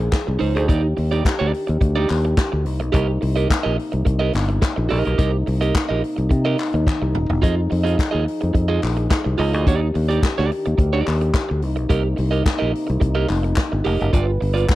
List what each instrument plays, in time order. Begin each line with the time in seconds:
Already playing: french horn section F3 D#4 G#4
0.12 muted clean electric guitar stroke, kick, snare, clap, closed hi-hat
0.27 fingered electric bass C2, muted clean electric guitar stroke
0.39 fingered electric bass C#2, clean electric guitar D#4 G#4 C5, open hi-hat
0.55 fingered electric bass D2, clean electric guitar D#4 G#4 C5, closed hi-hat
0.68 fingered electric bass D#2, french horn section D#3 D4 G4, clean electric guitar D#4 G4 D5, kick, closed hi-hat
0.83 muted clean electric guitar stroke
0.97 fingered electric bass D#2, muted clean electric guitar stroke, open hi-hat
1.11 clean electric guitar D#4 G4 D5, closed hi-hat
1.24 muted clean electric guitar stroke, kick, snare, clap, closed hi-hat
1.39 fingered electric bass D2, clean electric guitar D#4 G4 D5
1.53 muted clean electric guitar stroke, open hi-hat
1.67 fingered electric bass D#2, muted clean electric guitar stroke, closed hi-hat
1.81 fingered electric bass D2, muted clean electric guitar stroke, kick, closed hi-hat
1.96 clean electric guitar D#4 G4 D5
2.09 fingered electric bass D#2, muted clean electric guitar stroke, clap, open hi-hat
2.24 muted clean electric guitar stroke, closed hi-hat
2.37 muted clean electric guitar stroke, kick, snare, clap, closed hi-hat
2.52 fingered electric bass D2, muted clean electric guitar stroke
2.65 fingered electric bass C2, french horn section C3 A#3 D#4, open hi-hat
2.80 fingered electric bass B1, muted clean electric guitar stroke, closed hi-hat
2.92 fingered electric bass C2, clean electric guitar G4 A#4 D#5, kick, closed hi-hat
3.08 muted clean electric guitar stroke
3.21 fingered electric bass C2, muted clean electric guitar stroke, open hi-hat
3.36 clean electric guitar G4 A#4 D#5, closed hi-hat
3.49 muted clean electric guitar stroke, kick, snare, clap, closed hi-hat
3.63 fingered electric bass A#1, clean electric guitar G4 A#4 D#5
3.78 muted clean electric guitar stroke, open hi-hat
3.92 fingered electric bass C2, muted clean electric guitar stroke, closed hi-hat
4.05 fingered electric bass C2, muted clean electric guitar stroke, kick, closed hi-hat
4.19 clean electric guitar G4 A#4 D#5
4.33 fingered electric bass G1, muted clean electric guitar stroke, clap, open hi-hat
4.48 muted clean electric guitar stroke, closed hi-hat
4.62 muted clean electric guitar stroke, kick, snare, clap, closed hi-hat
4.76 fingered electric bass A#1, muted clean electric guitar stroke
4.89 fingered electric bass A#1, clean electric guitar G4 A#4 D#5, open hi-hat
5.05 fingered electric bass B1, clean electric guitar G4 A#4 D#5, closed hi-hat
5.18 fingered electric bass C2, clean electric guitar G4 A#4 D#5, kick, closed hi-hat
5.33 muted clean electric guitar stroke
5.46 fingered electric bass C2, muted clean electric guitar stroke, open hi-hat
5.61 clean electric guitar G4 A#4 D#5, closed hi-hat
5.75 muted clean electric guitar stroke, kick, snare, clap, closed hi-hat
5.89 fingered electric bass A#1, clean electric guitar G4 A#4 D#5
6.04 open hi-hat
6.17 fingered electric bass C2, muted clean electric guitar stroke, closed hi-hat
6.29 fingered electric bass C3, muted clean electric guitar stroke, kick, closed hi-hat
6.45 clean electric guitar G4 A#4 D#5
6.58 muted clean electric guitar stroke, clap, open hi-hat
6.73 fingered electric bass D#2, muted clean electric guitar stroke, closed hi-hat
6.87 muted clean electric guitar stroke, kick, clap, high tom
7.02 fingered electric bass C2, muted clean electric guitar stroke
7.15 fingered electric bass D#1, mid tom
7.29 fingered electric bass E1, muted clean electric guitar stroke, floor tom
7.42 fingered electric bass F2, french horn section F3 G#4, clean electric guitar F4 G#4 D#5, kick, closed hi-hat
7.56 muted clean electric guitar stroke
7.70 fingered electric bass F2, muted clean electric guitar stroke, open hi-hat
7.84 clean electric guitar F4 G#4 D#5, closed hi-hat
7.97 muted clean electric guitar stroke, kick, snare, clap, closed hi-hat
8.11 fingered electric bass D#2, clean electric guitar F4 G#4 D#5
8.25 muted clean electric guitar stroke, open hi-hat
8.41 fingered electric bass F2, muted clean electric guitar stroke, closed hi-hat
8.54 fingered electric bass F2, muted clean electric guitar stroke, kick, closed hi-hat
8.68 clean electric guitar F4 G#4 D#5
8.82 fingered electric bass A#1, muted clean electric guitar stroke, clap, open hi-hat
8.97 muted clean electric guitar stroke, closed hi-hat
9.10 muted clean electric guitar stroke, kick, snare, clap, closed hi-hat
9.24 fingered electric bass C2, muted clean electric guitar stroke
9.38 fingered electric bass C#2, clean electric guitar F4 G#4 D#5, open hi-hat
9.53 fingered electric bass D2, clean electric guitar F4 G#4 D#5, closed hi-hat
9.66 fingered electric bass D#2, french horn section D#3 D4 G4, clean electric guitar D#4 G4 D5, kick, closed hi-hat
9.81 muted clean electric guitar stroke
9.94 fingered electric bass D#2, muted clean electric guitar stroke, open hi-hat
10.09 clean electric guitar D#4 G4 D5, closed hi-hat
10.23 kick, snare, clap, closed hi-hat
10.38 fingered electric bass D2, clean electric guitar D#4 G4 D5, snare
10.51 muted clean electric guitar stroke, open hi-hat
10.65 fingered electric bass D#2, muted clean electric guitar stroke, closed hi-hat
10.78 fingered electric bass D2, muted clean electric guitar stroke, kick, closed hi-hat
10.93 clean electric guitar D#4 G4 D5
11.06 fingered electric bass D#2, muted clean electric guitar stroke, clap, open hi-hat
11.21 muted clean electric guitar stroke, closed hi-hat
11.34 muted clean electric guitar stroke, kick, snare, clap, closed hi-hat
11.49 fingered electric bass D2, muted clean electric guitar stroke
11.62 fingered electric bass C2, french horn section C3 A#3 D#4, open hi-hat
11.76 fingered electric bass B1, muted clean electric guitar stroke, closed hi-hat
11.89 fingered electric bass C2, clean electric guitar G4 A#4 D#5, kick, closed hi-hat
12.04 muted clean electric guitar stroke
12.16 fingered electric bass C2, muted clean electric guitar stroke, open hi-hat
12.31 clean electric guitar G4 A#4 D#5, closed hi-hat
12.44 muted clean electric guitar stroke, kick, snare, clap, closed hi-hat
12.59 fingered electric bass A#1, clean electric guitar G4 A#4 D#5
12.73 muted clean electric guitar stroke, open hi-hat
12.87 fingered electric bass C2, muted clean electric guitar stroke, closed hi-hat
13.00 fingered electric bass C2, muted clean electric guitar stroke, kick, closed hi-hat
13.15 clean electric guitar G4 A#4 D#5
13.28 fingered electric bass F1, muted clean electric guitar stroke, clap, open hi-hat
13.43 muted clean electric guitar stroke, closed hi-hat
13.56 muted clean electric guitar stroke, kick, snare, clap, closed hi-hat
13.72 fingered electric bass G1, muted clean electric guitar stroke
13.85 fingered electric bass F1, clean electric guitar G4 A#4 D#5, open hi-hat
14.00 fingered electric bass F#1, clean electric guitar G4 A#4 D#5, closed hi-hat
14.12 fingered electric bass G1, french horn section G3 F4 B4, clean electric guitar F4 B4 D5, kick, closed hi-hat
14.27 muted clean electric guitar stroke
14.41 fingered electric bass G1, muted clean electric guitar stroke, open hi-hat
14.54 clean electric guitar F4 B4 D5, closed hi-hat
14.68 muted clean electric guitar stroke, kick, snare, clap, closed hi-hat